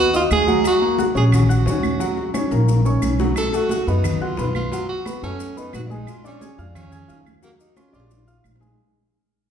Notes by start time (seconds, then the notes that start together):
Already playing: D#2
0.00 F#4
0.14 D#4 F4 D#5 D#6, high conga, maracas
0.31 D#2 G#4, high conga, claves, maracas
0.47 F#3 F#4 F#5, high conga, maracas
0.64 F#4, high bongo, high conga, claves, maracas
0.82 A#3 A#4 A#5, high conga
0.98 F#4 F#5 F#6, high bongo, high conga, maracas
1.15 A#1 C#4 G#4 C#5 C#6, maracas
1.32 F#4, high bongo, high conga, low conga, claves, maracas
1.49 F#4 F#5 F#6, high conga, maracas
1.66 D#2 C#4 C#5 C#6, high bongo, low bongo, maracas
1.83 high conga, claves, maracas
1.99 F#3 F#4 F#5, high bongo, high conga, maracas
2.17 high bongo, high conga
2.34 C#4 C#5 C#6, low bongo, high conga, claves, maracas
2.51 A#1 A#3 A#4 A#5, low bongo, high conga, maracas
2.68 low bongo, high conga, maracas
2.85 C#4 C#5 C#6, maracas
3.02 B1, low bongo, high conga, claves, maracas
3.19 F#3 F#4 F#5, low bongo, high conga, maracas
3.36 A4, high bongo, high conga, claves, maracas
3.53 A3 F#4 A4 A5, high conga, maracas
3.69 F#4 F#5 F#6, high bongo, high conga, maracas
3.87 F#2 B3 D#4 B4 B5, maracas
4.04 high bongo, high conga, low conga, claves, maracas
4.21 F4 F#4 F#5 F#6, high conga, low conga
4.37 B1 B3 B4 B5, high bongo, low bongo, high conga, maracas
4.55 F4, high conga, claves, maracas
4.72 F#3 F4 F#4 F#5, high bongo, high conga, maracas
4.89 F#4, high conga
5.05 B3 B4 B5, high bongo, high conga, claves, maracas
5.22 F#2 A3 C#4 A4 A5, high bongo, high conga, maracas
5.39 high bongo, high conga, maracas
5.56 B3 D#4 B4 B5, high bongo, high conga, maracas
5.73 A#1 F#4, high bongo, low bongo, high conga, claves, maracas
5.88 G#3 D4 G#4 G#5, high conga, maracas
5.92 D#4
6.07 F4, high bongo, claves, maracas
6.24 C#4 D4 D5 D6, high conga, maracas
6.41 G#4 G#5 G#6, high bongo, high conga, maracas
6.58 F2 D4 F4 F5 F6, maracas
6.75 C#4, high bongo, high conga, low conga, claves, maracas
6.92 G#4 G#5 G#6, high conga, low conga, maracas
7.08 D#2 F4 F5 F6, high bongo, low bongo, high conga, maracas
7.26 high conga, claves, maracas
7.42 F#3 A#3 F#4 F#5, high bongo, high conga, maracas
7.60 D#4, high conga, maracas
7.76 C#4 F4 C#5 C#6, high conga, claves, maracas
7.89 high bongo
7.93 A#1 D4 F4 D5 D6, high conga, maracas
8.00 high bongo
8.11 low bongo, high conga, maracas
8.27 F4 F5 F6, high conga, maracas
8.44 A#1, low bongo, high conga, claves, maracas
8.56 low bongo
8.60 G#3 G#4 G#5, high conga, maracas
8.67 low bongo